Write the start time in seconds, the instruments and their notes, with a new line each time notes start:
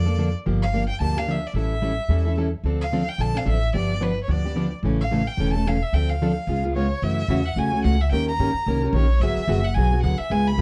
Already playing: upright bass F2, violin D5
0.06 steel-string acoustic guitar A#3 D4 A4
0.18 steel-string acoustic guitar D3 F3 A#3 D4 A4
0.46 upright bass G1, steel-string acoustic guitar D3 F3 A#3 D4 G4
0.62 violin F5
0.73 steel-string acoustic guitar D3 F3 A#3 D4 G4
0.89 violin G5
1.00 upright bass D2, steel-string acoustic guitar D3 F3 A#3 D4 G4, violin A5
1.17 steel-string acoustic guitar A#3 D4 G4, violin F5
1.28 steel-string acoustic guitar D3 F3 A#3 D4 G4, violin E5
1.47 violin D5
1.54 upright bass A1, steel-string acoustic guitar E3 G3 C#4 E4 A4, violin E5
1.82 steel-string acoustic guitar E3 G3 C#4 E4 A4
2.09 upright bass E2, steel-string acoustic guitar E3 G3 C#4 E4 A4
2.25 steel-string acoustic guitar C#4 E4 A4
2.37 steel-string acoustic guitar E3 G3 C#4 E4 A4
2.64 upright bass D2, steel-string acoustic guitar D3 F3 C4 D4 A4
2.81 violin F5
2.92 steel-string acoustic guitar D3 F3 C4 D4 A4
3.09 violin G5
3.18 upright bass A#1, steel-string acoustic guitar D3 F3 C4 D4 A4, violin A5
3.34 steel-string acoustic guitar C4 D4 A4, violin F5
3.45 upright bass A1, steel-string acoustic guitar D3 F3 C4 D4 A4
3.49 violin E5
3.73 upright bass G1, steel-string acoustic guitar D3 F3 B3 D4 G4, violin D5
4.00 steel-string acoustic guitar D3 F3 B3 D4 G4, violin B4
4.24 violin C#5
4.28 upright bass D2, steel-string acoustic guitar D3 F3 B3 D4 G4, violin D5
4.45 steel-string acoustic guitar B3 D4 G4
4.56 steel-string acoustic guitar D3 F3 B3 D4 G4
4.83 upright bass A1, steel-string acoustic guitar C#3 E3 A3 C#4 A4
5.01 violin F5
5.11 steel-string acoustic guitar C#3 E3 A3 C#4 A4
5.28 violin G5
5.37 upright bass E1, steel-string acoustic guitar C#3 E3 A3 C#4 A4
5.53 steel-string acoustic guitar A3 C#4 A4, violin A5
5.66 steel-string acoustic guitar C#3 E3 A3 C#4 A4, violin F5
5.83 violin E5
5.93 upright bass D2, steel-string acoustic guitar D3 F3 C4 D4 A4, violin G5
6.10 violin F5
6.22 steel-string acoustic guitar D3 F3 C4 D4 A4
6.47 upright bass C#2, steel-string acoustic guitar C#3 G#3 B3 F4 G#4
6.64 steel-string acoustic guitar B3 F4 G#4
6.76 steel-string acoustic guitar C#3 G#3 B3 F4 G#4, violin C#5
7.02 upright bass F#2, steel-string acoustic guitar C#3 E3 A3 C#4 F#4, violin E5
7.28 upright bass E2, steel-string acoustic guitar C#3 E3 A3 C#4 F#4
7.46 violin F#5
7.56 upright bass D2, steel-string acoustic guitar C#3 E3 A3 C#4 F#4, violin G#5
7.72 steel-string acoustic guitar A3 C#4 F#4
7.84 upright bass C#2, steel-string acoustic guitar C#3 E3 A3 C#4 F#4, violin F#5
8.01 violin E5
8.12 upright bass D#2, steel-string acoustic guitar D#3 A#3 C#4 G4 A#4, violin G5
8.28 violin A#5
8.39 upright bass G2, steel-string acoustic guitar D#3 A#3 C#4 G4 A#4
8.54 muted upright bass stroke
8.66 upright bass C2, steel-string acoustic guitar D#3 A#3 C#4 G4 A#4
8.83 steel-string acoustic guitar C#4 G4 A#4
8.93 upright bass A#1, steel-string acoustic guitar D#3 A#3 C#4 G4, violin C#5
8.97 steel-string acoustic guitar A#4
9.20 upright bass G#1, steel-string acoustic guitar D3 F#3 B3 F#4 G#4, violin E5
9.36 muted upright bass stroke
9.48 upright bass F#1, steel-string acoustic guitar D3 F#3 B3 F#4 G#4
9.64 violin F#5
9.74 upright bass B1, steel-string acoustic guitar D3 F#3 B3 F#4 G#4, violin G#5
9.92 steel-string acoustic guitar B3 F#4 G#4
10.03 upright bass D2, steel-string acoustic guitar D3 F#3 B3 F#4 G#4, violin F#5
10.18 violin E5, muted upright bass stroke
10.30 upright bass C#2, steel-string acoustic guitar C#3 G#3 B3 F4 G#4, violin G#5
10.48 violin B5
10.58 upright bass F2, steel-string acoustic guitar C#3 G#3 B3